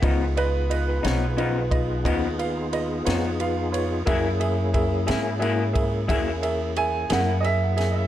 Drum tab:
RD |xxxxxxxxxxxx|xxxxxxxxxxxx|
SD |---o-----o--|---o-----o-o|
BD |o----oo-----|o-o--oo-----|